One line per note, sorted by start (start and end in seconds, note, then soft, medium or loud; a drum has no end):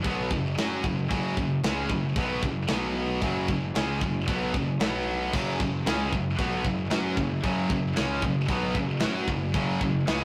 0.04 0.29 B1 medium
0.04 0.30 B2 medium
0.04 0.31 F#3 loud
0.04 0.31 B3 loud
0.04 kick loud
0.04 china medium
0.31 0.56 F#1 medium
0.31 0.52 F#2 medium
0.31 0.52 C#3 medium
0.31 kick medium
0.57 0.83 F#2 loud
0.57 0.83 F#3 medium
0.57 0.84 C#4 loud
0.57 0.84 F#4 loud
0.57 snare loud
0.57 china medium
0.84 1.09 F#1 medium
0.84 1.05 F#2 medium
0.84 1.05 C#3 medium
0.84 kick medium
1.09 1.35 F#1 loud
1.09 1.35 F#2 medium
1.09 1.36 C#3 loud
1.09 1.36 F#3 loud
1.09 kick loud
1.09 china medium
1.37 1.62 F#1 medium
1.37 1.58 F#2 medium
1.37 1.59 C#3 medium
1.37 kick medium
1.63 1.89 C#2 loud
1.63 1.89 C#3 medium
1.63 1.90 G#3 loud
1.63 1.90 C#4 loud
1.63 snare loud
1.63 china medium
1.90 2.14 F#1 medium
1.90 2.11 F#2 medium
1.90 2.12 C#3 medium
1.90 kick medium
2.16 2.41 B1 medium
2.16 2.42 B2 loud
2.16 2.42 F#3 loud
2.16 2.43 B3 loud
2.16 kick loud
2.16 china medium
2.43 2.68 F#1 medium
2.43 2.64 F#2 medium
2.43 2.65 C#3 medium
2.43 kick medium
2.68 3.19 B1 loud
2.68 3.21 B2 loud
2.68 3.21 F#3 loud
2.68 3.22 B3 loud
2.68 snare loud
2.68 china medium
3.21 3.47 F#1 medium
3.21 3.47 F#2 loud
3.21 3.47 C#3 loud
3.21 3.48 F#3 loud
3.21 kick loud
3.21 china medium
3.48 3.73 F#1 medium
3.48 3.69 F#2 medium
3.48 3.70 C#3 medium
3.48 kick medium
3.74 4.00 C#2 loud
3.74 3.99 C#3 medium
3.74 4.01 G#3 loud
3.74 4.01 C#4 loud
3.74 snare loud
3.74 china medium
4.00 4.26 F#1 medium
4.00 4.22 F#2 medium
4.00 4.22 C#3 medium
4.00 kick medium
4.26 4.52 B1 medium
4.26 4.53 B2 medium
4.26 4.53 F#3 medium
4.26 4.53 B3 medium
4.26 kick loud
4.26 china medium
4.53 4.79 F#1 medium
4.53 4.75 F#2 medium
4.53 4.75 C#3 medium
4.53 kick medium
4.80 5.30 B1 medium
4.80 5.32 B2 medium
4.80 5.32 F#3 medium
4.80 5.33 B3 medium
4.80 snare loud
4.80 china medium
5.33 5.58 F#1 loud
5.33 5.59 F#2 loud
5.33 5.59 C#3 loud
5.33 5.59 F#3 loud
5.33 kick loud
5.33 china medium
5.33 crash medium
5.60 5.84 F#1 medium
5.60 5.81 F#2 medium
5.60 5.81 C#3 medium
5.60 kick medium
5.85 6.11 C#2 loud
5.85 6.11 C#3 loud
5.85 6.12 G#3 loud
5.85 6.12 C#4 loud
5.85 snare loud
5.85 china medium
6.13 6.37 F#1 medium
6.13 6.34 F#2 medium
6.13 6.34 C#3 medium
6.13 kick medium
6.39 6.64 B1 medium
6.39 6.64 B2 loud
6.39 6.65 F#3 loud
6.39 6.65 B3 loud
6.39 kick loud
6.39 china medium
6.64 6.90 F#1 medium
6.64 6.86 F#2 medium
6.64 6.86 C#3 medium
6.64 kick medium
6.90 7.17 F#2 loud
6.90 7.17 F#3 loud
6.90 7.17 C#4 medium
6.90 7.18 F#4 loud
6.90 snare loud
6.90 china medium
7.17 7.42 F#1 medium
7.17 7.39 F#2 medium
7.17 7.39 C#3 medium
7.17 kick medium
7.43 7.69 F#1 loud
7.43 7.69 F#2 loud
7.43 7.69 C#3 loud
7.43 7.70 F#3 loud
7.43 kick loud
7.43 china medium
7.70 7.95 F#1 medium
7.70 7.92 F#2 medium
7.70 7.92 C#3 medium
7.70 kick loud
7.96 8.22 C#2 loud
7.96 8.22 C#3 medium
7.96 8.23 G#3 loud
7.96 8.23 C#4 loud
7.96 snare loud
7.96 china medium
8.22 8.48 F#1 medium
8.22 8.45 F#2 medium
8.22 8.45 C#3 medium
8.22 kick loud
8.49 8.74 B1 medium
8.49 8.76 B2 loud
8.49 8.76 F#3 loud
8.49 8.76 B3 loud
8.49 kick loud
8.49 china medium
8.75 9.01 F#1 medium
8.75 8.98 F#2 medium
8.75 8.98 C#3 medium
8.75 kick medium
9.00 9.28 F#3 medium
9.00 9.29 C#4 loud
9.00 9.29 F#4 loud
9.00 snare loud
9.00 china medium
9.04 9.27 F#2 loud
9.28 9.53 F#1 medium
9.28 9.50 F#2 medium
9.28 9.51 C#3 medium
9.28 kick medium
9.54 9.80 F#1 loud
9.54 9.81 F#2 loud
9.54 9.81 C#3 loud
9.54 9.82 F#3 loud
9.54 kick loud
9.54 china medium
9.81 10.07 F#1 medium
9.81 10.03 F#2 medium
9.81 10.04 C#3 medium
9.81 kick medium
10.07 10.24 C#2 loud
10.07 10.24 C#3 loud
10.07 10.24 G#3 loud
10.07 10.24 C#4 loud
10.07 snare loud
10.07 china medium